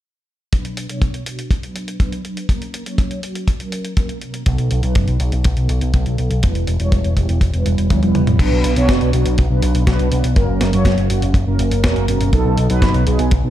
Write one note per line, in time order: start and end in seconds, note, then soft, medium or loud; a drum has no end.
0.53 0.87 B2 medium
0.53 0.87 F#3 medium
0.53 0.86 B3 medium
0.53 0.87 D4 medium
0.53 0.87 B4 loud
0.53 kick loud
0.53 closed hi-hat medium
0.65 closed hi-hat soft
0.77 closed hi-hat medium
0.89 1.23 B2 medium
0.89 1.23 F#3 medium
0.89 1.23 B3 medium
0.89 1.23 D4 medium
0.89 1.23 C#5 loud
0.89 closed hi-hat soft
1.02 kick loud
1.02 closed hi-hat medium
1.14 closed hi-hat soft
1.26 1.51 B2 medium
1.26 1.51 F#3 medium
1.26 1.51 B3 medium
1.26 1.51 F#4 medium
1.26 closed hi-hat medium
1.39 closed hi-hat soft
1.51 kick loud
1.51 closed hi-hat medium
1.63 1.97 B2 medium
1.63 1.97 F#3 medium
1.63 1.97 B3 medium
1.63 1.97 D4 medium
1.63 1.97 B4 medium
1.63 closed hi-hat soft
1.76 closed hi-hat medium
1.88 closed hi-hat soft
2.00 2.22 B2 medium
2.00 2.22 F#3 medium
2.00 2.22 B3 medium
2.00 2.22 D4 medium
2.00 2.22 B4 loud
2.00 kick loud
2.00 closed hi-hat medium
2.12 closed hi-hat soft
2.25 2.46 F#3 medium
2.25 2.46 B3 medium
2.25 2.46 D4 medium
2.25 closed hi-hat soft
2.37 closed hi-hat soft
2.49 2.83 F#3 medium
2.49 2.83 A#3 medium
2.49 2.83 C#4 medium
2.49 2.83 A#4 loud
2.49 kick loud
2.49 closed hi-hat medium
2.62 closed hi-hat soft
2.74 closed hi-hat medium
2.86 3.20 F#3 loud
2.86 3.20 A#3 medium
2.86 3.20 C#4 medium
2.86 3.20 C#5 loud
2.86 closed hi-hat soft
2.98 kick loud
2.98 closed hi-hat medium
3.11 closed hi-hat soft
3.23 3.48 F#3 medium
3.23 3.48 A#3 medium
3.23 3.48 C#4 medium
3.23 3.48 F#4 medium
3.23 closed hi-hat medium
3.35 closed hi-hat soft
3.48 kick medium
3.48 closed hi-hat medium
3.60 3.94 F#3 medium
3.60 3.94 A#3 medium
3.60 3.94 C#4 medium
3.60 3.94 A#4 medium
3.60 closed hi-hat soft
3.72 closed hi-hat medium
3.85 closed hi-hat soft
3.97 4.19 F#3 medium
3.97 4.19 A#3 medium
3.97 4.19 C#4 medium
3.97 4.18 A#4 loud
3.97 kick loud
3.97 closed hi-hat medium
4.09 closed hi-hat soft
4.21 4.43 B2 medium
4.21 4.43 F#3 medium
4.21 4.43 A#3 medium
4.21 4.43 C#4 medium
4.21 4.43 A#4 medium
4.21 closed hi-hat soft
4.34 closed hi-hat soft
4.46 4.57 B1 loud
4.46 4.80 B2 medium
4.46 4.80 F#3 medium
4.46 4.80 B3 medium
4.46 4.80 D#4 medium
4.46 4.80 A4 loud
4.46 kick loud
4.46 closed hi-hat medium
4.58 4.69 B1 medium
4.58 closed hi-hat soft
4.71 4.81 B1 medium
4.71 closed hi-hat medium
4.83 4.94 B1 medium
4.83 5.17 B2 medium
4.83 5.17 F#3 medium
4.83 5.17 B3 medium
4.83 5.17 D#4 medium
4.83 5.17 B4 loud
4.83 closed hi-hat soft
4.95 5.06 F#1 medium
4.95 kick loud
4.95 closed hi-hat medium
5.08 5.18 B1 medium
5.08 closed hi-hat soft
5.20 5.31 B1 medium
5.20 5.45 B2 medium
5.20 5.45 B3 medium
5.20 5.45 G#4 medium
5.20 closed hi-hat medium
5.32 5.43 B1 medium
5.32 closed hi-hat soft
5.44 5.56 B1 medium
5.44 kick loud
5.44 closed hi-hat medium
5.57 5.67 B1 medium
5.57 5.91 B2 medium
5.57 5.91 F#3 medium
5.57 5.91 B3 medium
5.57 5.91 D#4 medium
5.57 5.91 A4 medium
5.57 closed hi-hat soft
5.69 5.80 B1 medium
5.69 closed hi-hat medium
5.81 5.92 B1 medium
5.81 closed hi-hat soft
5.93 6.04 B1 loud
5.93 6.15 B2 medium
5.93 6.15 F#3 medium
5.93 6.15 B3 medium
5.93 6.15 D#4 medium
5.93 6.15 A4 loud
5.93 kick loud
5.93 closed hi-hat medium
6.06 6.17 B1 medium
6.06 closed hi-hat soft
6.18 6.29 B1 medium
6.18 6.40 F#3 medium
6.18 6.40 B3 medium
6.18 6.40 D#4 medium
6.18 6.40 A4 medium
6.18 closed hi-hat soft
6.30 6.41 B1 medium
6.30 closed hi-hat soft
6.43 6.54 E1 medium
6.43 6.77 G3 medium
6.43 6.77 B3 medium
6.43 6.77 E4 medium
6.43 6.77 B4 medium
6.43 kick loud
6.43 closed hi-hat medium
6.55 6.66 E1 medium
6.55 closed hi-hat soft
6.67 6.78 E1 medium
6.67 closed hi-hat medium
6.80 6.90 E1 medium
6.80 7.14 G3 medium
6.80 7.14 B3 medium
6.80 7.14 E4 medium
6.80 7.14 C#5 loud
6.80 closed hi-hat soft
6.92 7.03 E1 medium
6.92 kick loud
6.92 closed hi-hat medium
7.04 7.15 E1 medium
7.04 closed hi-hat soft
7.17 7.27 E1 medium
7.17 7.41 G3 medium
7.17 7.41 B3 medium
7.17 7.41 E4 medium
7.17 7.41 G4 medium
7.17 kick medium
7.17 closed hi-hat medium
7.29 7.40 E1 medium
7.29 closed hi-hat soft
7.41 7.52 E1 medium
7.41 kick loud
7.41 closed hi-hat medium
7.53 7.64 E1 medium
7.53 7.87 G3 medium
7.53 7.87 B3 medium
7.53 7.87 E4 medium
7.53 7.87 B4 medium
7.53 closed hi-hat soft
7.66 7.76 E1 medium
7.66 closed hi-hat medium
7.78 7.89 E1 medium
7.78 closed hi-hat soft
7.90 8.01 D2 loud
7.90 8.00 G3 medium
7.90 8.00 B3 medium
7.90 8.00 E4 medium
7.90 8.00 C#5 medium
7.90 kick loud
7.90 closed hi-hat medium
7.90 high tom medium
8.03 8.13 E1 medium
8.03 8.37 G3 medium
8.03 8.37 B3 medium
8.03 8.37 E4 medium
8.03 8.37 B4 medium
8.03 closed hi-hat soft
8.03 high tom medium
8.15 8.26 E1 medium
8.15 closed hi-hat soft
8.15 mid tom medium
8.27 8.38 E1 medium
8.27 closed hi-hat soft
8.27 mid tom medium
8.39 8.50 B1 loud
8.39 8.73 B2 loud
8.39 8.73 F#3 medium
8.39 8.73 B3 medium
8.39 8.73 D4 medium
8.39 8.73 B4 loud
8.39 kick loud
8.39 closed hi-hat medium
8.39 crash medium
8.52 8.63 B1 medium
8.64 8.75 B1 medium
8.64 closed hi-hat medium
8.76 8.87 B1 medium
8.76 9.10 B2 loud
8.76 9.10 F#3 medium
8.76 9.10 B3 medium
8.76 9.10 D4 medium
8.76 9.10 C#5 loud
8.76 closed hi-hat medium
8.89 9.00 F#1 loud
8.89 kick loud
8.89 snare loud
8.89 closed hi-hat medium
9.01 9.12 B1 medium
9.01 closed hi-hat soft
9.13 9.24 B1 medium
9.13 9.38 B2 medium
9.13 9.38 F#3 medium
9.13 9.38 B3 medium
9.13 9.38 D4 medium
9.13 9.38 F#4 medium
9.13 closed hi-hat medium
9.26 9.36 B1 medium
9.26 closed hi-hat soft
9.38 9.49 B1 loud
9.38 kick loud
9.38 closed hi-hat medium
9.50 9.61 B1 medium
9.50 9.84 B2 medium
9.50 9.84 F#3 medium
9.50 9.84 B3 medium
9.50 9.84 D4 medium
9.50 9.84 B4 medium
9.62 9.73 B1 medium
9.62 closed hi-hat medium
9.75 9.86 B1 medium
9.75 closed hi-hat medium
9.87 9.98 B1 loud
9.87 10.09 B2 medium
9.87 10.09 F#3 medium
9.87 10.09 B3 medium
9.87 10.09 D4 medium
9.87 10.09 B4 loud
9.87 kick loud
9.87 snare loud
9.87 closed hi-hat medium
9.99 10.10 B1 medium
9.99 closed hi-hat soft
10.12 10.22 B1 medium
10.12 10.33 F#3 medium
10.12 10.33 B3 medium
10.12 10.33 D4 medium
10.12 10.33 B4 medium
10.12 closed hi-hat medium
10.24 10.35 B1 medium
10.24 closed hi-hat medium
10.36 10.47 F#1 loud
10.36 10.70 F#3 medium
10.36 10.70 A#3 medium
10.36 10.70 C#4 medium
10.36 10.70 A#4 loud
10.36 kick loud
10.36 closed hi-hat medium
10.49 10.59 F#1 medium
10.61 10.72 F#1 medium
10.61 snare medium
10.61 closed hi-hat medium
10.73 10.84 F#1 medium
10.73 11.07 F#3 loud
10.73 11.07 A#3 medium
10.73 11.07 C#4 medium
10.73 11.07 C#5 loud
10.73 closed hi-hat medium
10.85 10.96 F#1 loud
10.85 kick loud
10.85 snare loud
10.85 closed hi-hat medium
10.98 11.08 F#1 medium
10.98 closed hi-hat soft
11.10 11.21 F#1 medium
11.10 11.35 F#3 medium
11.10 11.35 A#3 medium
11.10 11.35 C#4 medium
11.10 11.35 F#4 medium
11.10 closed hi-hat medium
11.22 11.33 F#1 medium
11.22 closed hi-hat medium
11.34 11.45 F#1 loud
11.34 kick loud
11.34 closed hi-hat medium
11.47 11.58 F#1 medium
11.47 11.81 F#3 medium
11.47 11.81 A#3 medium
11.47 11.81 C#4 medium
11.47 11.81 A#4 medium
11.59 11.70 F#1 medium
11.59 closed hi-hat medium
11.71 11.82 F#1 medium
11.71 closed hi-hat medium
11.84 11.95 E1 loud
11.84 12.05 F#3 medium
11.84 12.05 A#3 medium
11.84 12.05 C#4 medium
11.84 12.05 A#4 loud
11.84 kick loud
11.84 snare loud
11.84 closed hi-hat medium
11.96 12.07 F#1 medium
11.96 closed hi-hat soft
12.08 12.19 F#1 medium
12.08 12.30 B2 medium
12.08 12.30 F#3 medium
12.08 12.30 A#3 medium
12.08 12.30 C#4 medium
12.08 12.30 A#4 medium
12.08 closed hi-hat medium
12.21 12.31 F#1 medium
12.21 closed hi-hat medium
12.33 12.44 B1 loud
12.33 12.67 B2 medium
12.33 12.67 F#3 medium
12.33 12.67 B3 medium
12.33 12.67 D#4 medium
12.33 12.67 A4 loud
12.33 kick loud
12.33 closed hi-hat medium
12.45 12.56 B1 medium
12.58 12.68 B1 medium
12.58 closed hi-hat medium
12.70 12.81 B1 medium
12.70 13.04 B2 loud
12.70 13.04 F#3 medium
12.70 13.04 B3 medium
12.70 13.04 D#4 medium
12.70 13.04 B4 loud
12.70 closed hi-hat medium
12.82 12.93 F#1 loud
12.82 kick loud
12.82 snare loud
12.82 closed hi-hat medium
12.94 13.05 B1 medium
12.94 closed hi-hat soft
13.07 13.17 B1 loud
13.07 13.31 B2 medium
13.07 13.31 F#3 medium
13.07 13.31 B3 medium
13.07 13.31 D#4 medium
13.07 13.31 G#4 medium
13.07 closed hi-hat medium
13.19 13.30 B1 medium
13.19 closed hi-hat soft
13.31 13.42 B1 medium
13.31 kick loud
13.31 closed hi-hat medium
13.44 13.50 B1 medium
13.44 13.50 B2 medium
13.44 13.50 F#3 medium
13.44 13.50 B3 medium
13.44 13.50 D#4 medium
13.44 13.50 A4 medium